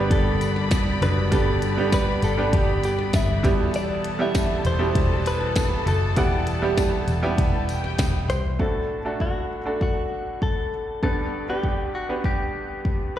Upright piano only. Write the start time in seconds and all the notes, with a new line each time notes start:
Already playing: G2 B2 D3 G3 A#3 B3 D4 G4
1.02 B2 D3
1.31 G3 B3 D4 G4
1.77 G3 B3 D4 G4
2.37 G3 B3 D4 G4
3.43 B2 G3 B3 E4 G4
4.19 G3 B3 E4 G4
4.79 B2 G3 E4 G4
5.86 B2
6.17 G3 B3 E4 F#5
6.62 G3 B3 E4 G4
7.22 G3 B3 E4 G4
8.59 A2 A3 D4 F#4 A4
9.05 A3 D4 F#4 A4
9.65 A3 D4 F#4 A4
11.03 G2 D3 B3 D4 G4 B4
11.48 B3 D4 G4 B4
12.09 B3 D4 G4 B4